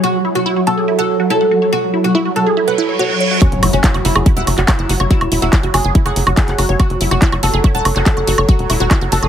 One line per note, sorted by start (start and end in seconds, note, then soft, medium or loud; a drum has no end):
0.00 3.40 F#3 medium
0.00 0.09 F#4 medium
0.00 0.21 F#4 loud
0.25 0.28 E4 medium
0.35 0.37 F#4 medium
0.35 0.53 F#4 medium
0.46 0.48 E4 loud
0.56 0.60 F#4 medium
0.67 0.73 F#4 medium
0.67 0.84 A4 medium
0.78 0.83 G#4 medium
0.88 0.92 E4 medium
0.99 1.16 A4 medium
0.99 1.01 F#5 loud
1.20 1.25 F#4 medium
1.30 1.34 E4 medium
1.30 1.54 A4 medium
1.41 1.45 F#5 medium
1.51 1.57 F#4 medium
1.62 1.68 C#5 medium
1.73 1.78 F#4 medium
1.73 1.90 F#4 loud
1.94 1.97 E4 medium
2.04 2.06 F#4 medium
2.04 2.22 F#4 medium
2.15 2.17 E4 loud
2.25 2.29 F#4 medium
2.36 2.42 F#4 medium
2.36 2.53 A4 medium
2.46 2.52 G#4 medium
2.57 2.61 E4 medium
2.57 reverse cymbal medium
2.68 2.85 B4 medium
2.68 2.70 F#5 loud
2.78 2.82 E4 loud
2.89 2.94 C#5 medium
2.99 3.03 F#4 loud
2.99 3.23 C#5 medium
3.10 3.14 F#4 medium
3.20 3.24 C#5 loud
3.31 3.37 F#4 medium
3.42 9.28 F#3 medium
3.42 3.59 C#4 loud
3.42 3.47 F#4 medium
3.42 kick loud
3.42 closed hi-hat medium
3.42 impact medium
3.42 high woodblock soft
3.52 3.60 F#1 medium
3.52 closed hi-hat soft
3.63 3.70 F#1 loud
3.63 3.66 E4 medium
3.63 open hi-hat loud
3.63 high woodblock medium
3.73 3.81 F#1 medium
3.73 3.91 C#4 medium
3.73 3.75 F#4 medium
3.73 closed hi-hat soft
3.84 3.86 E4 loud
3.84 kick loud
3.84 clap loud
3.84 closed hi-hat medium
3.94 4.02 F#1 medium
3.94 3.98 F#4 medium
3.94 closed hi-hat soft
3.94 high woodblock soft
4.05 4.12 F#1 loud
4.05 4.22 E4 loud
4.05 4.11 F#4 medium
4.05 open hi-hat loud
4.15 4.23 F#1 medium
4.15 4.21 G#4 medium
4.15 closed hi-hat soft
4.15 high woodblock medium
4.26 4.30 E4 medium
4.26 kick loud
4.26 closed hi-hat medium
4.37 4.44 E1 medium
4.37 4.54 E4 medium
4.37 4.39 F#5 loud
4.37 closed hi-hat soft
4.47 4.55 F#1 loud
4.47 open hi-hat loud
4.47 high woodblock soft
4.58 4.65 F#1 medium
4.58 4.63 F#4 medium
4.58 clap soft
4.58 closed hi-hat soft
4.68 4.72 E4 medium
4.68 4.92 E4 medium
4.68 kick loud
4.68 clap loud
4.68 closed hi-hat medium
4.68 high woodblock medium
4.79 4.86 F#1 medium
4.79 4.83 F#5 medium
4.79 closed hi-hat soft
4.89 4.97 F#1 loud
4.89 4.95 F#4 medium
4.89 open hi-hat loud
5.00 5.08 F#1 medium
5.00 5.06 C#5 medium
5.00 closed hi-hat soft
5.00 high woodblock soft
5.11 5.28 E4 loud
5.11 5.16 F#4 medium
5.11 kick loud
5.11 closed hi-hat medium
5.21 5.29 E1 medium
5.21 closed hi-hat soft
5.21 high woodblock medium
5.32 5.39 E1 loud
5.32 5.35 E4 medium
5.32 open hi-hat loud
5.42 5.50 E1 medium
5.42 5.60 E4 medium
5.42 5.44 F#4 medium
5.42 closed hi-hat soft
5.53 5.55 E4 loud
5.53 kick loud
5.53 clap loud
5.53 closed hi-hat medium
5.53 high woodblock soft
5.63 5.71 F#1 medium
5.63 5.67 F#4 medium
5.63 closed hi-hat soft
5.74 5.81 F#1 loud
5.74 5.80 F#4 medium
5.74 5.91 G#4 loud
5.74 open hi-hat loud
5.74 high woodblock medium
5.84 5.92 F#1 medium
5.84 5.90 G#4 medium
5.84 closed hi-hat soft
5.95 5.99 E4 medium
5.95 kick loud
5.95 closed hi-hat medium
6.06 6.13 F#1 medium
6.06 6.23 G#4 medium
6.06 6.08 F#5 loud
6.06 closed hi-hat soft
6.06 high woodblock soft
6.16 6.24 F#1 loud
6.16 open hi-hat loud
6.27 6.34 F#1 medium
6.27 6.32 F#4 medium
6.27 closed hi-hat soft
6.27 high woodblock medium
6.37 6.41 E4 medium
6.37 6.61 G#4 loud
6.37 kick loud
6.37 clap loud
6.37 closed hi-hat medium
6.48 6.55 F#1 medium
6.48 6.52 F#5 medium
6.48 clap soft
6.48 closed hi-hat soft
6.58 6.66 F#1 loud
6.58 6.64 F#4 medium
6.58 open hi-hat loud
6.58 high woodblock soft
6.69 6.77 F#1 medium
6.69 6.75 C#5 medium
6.69 closed hi-hat soft
6.80 6.97 F#4 loud
6.80 6.85 F#4 medium
6.80 kick loud
6.80 closed hi-hat medium
6.80 high woodblock medium
6.90 6.98 F#1 medium
6.90 closed hi-hat soft
7.01 7.08 F#1 medium
7.01 7.04 E4 medium
7.01 open hi-hat loud
7.11 7.19 F#1 medium
7.11 7.14 F#4 medium
7.11 7.29 F#4 medium
7.11 closed hi-hat soft
7.11 high woodblock soft
7.22 7.24 E4 loud
7.22 kick loud
7.22 clap loud
7.22 closed hi-hat medium
7.32 7.40 F#1 medium
7.32 7.36 F#4 medium
7.32 closed hi-hat soft
7.32 high woodblock medium
7.43 7.51 F#1 loud
7.43 7.49 F#4 medium
7.43 7.60 A4 medium
7.43 open hi-hat loud
7.54 7.61 F#1 medium
7.54 7.59 G#4 medium
7.54 closed hi-hat soft
7.64 7.68 E4 medium
7.64 kick loud
7.64 closed hi-hat medium
7.64 high woodblock soft
7.75 7.82 E1 medium
7.75 7.92 A4 loud
7.75 7.77 F#5 loud
7.75 closed hi-hat soft
7.85 7.93 F#1 loud
7.85 open hi-hat loud
7.85 high woodblock medium
7.96 8.03 F#1 medium
7.96 8.01 F#4 medium
7.96 clap soft
7.96 closed hi-hat soft
8.06 8.10 E4 medium
8.06 8.30 A4 loud
8.06 kick loud
8.06 clap loud
8.06 closed hi-hat medium
8.17 8.24 F#1 medium
8.17 8.21 F#5 medium
8.17 closed hi-hat soft
8.17 high woodblock soft
8.27 8.35 F#1 loud
8.27 8.33 F#4 medium
8.27 open hi-hat loud
8.38 8.46 F#1 loud
8.38 8.44 C#5 medium
8.38 closed hi-hat soft
8.38 high woodblock medium
8.49 8.54 F#4 medium
8.49 8.66 F#4 loud
8.49 kick loud
8.49 closed hi-hat medium
8.59 8.67 E1 medium
8.59 closed hi-hat soft
8.70 8.77 E1 loud
8.70 8.73 E4 medium
8.70 open hi-hat loud
8.70 high woodblock soft
8.80 8.88 E1 medium
8.80 8.83 F#4 medium
8.80 8.98 F#4 medium
8.91 8.93 E4 loud
8.91 kick loud
8.91 clap loud
8.91 closed hi-hat medium
8.91 high woodblock medium
9.01 9.09 F#1 medium
9.01 9.05 F#4 medium
9.01 closed hi-hat soft
9.12 9.20 F#1 loud
9.12 9.18 F#4 medium
9.12 9.28 A4 loud
9.12 open hi-hat loud
9.23 9.28 F#1 medium
9.23 9.28 G#4 medium
9.23 closed hi-hat soft
9.23 high woodblock soft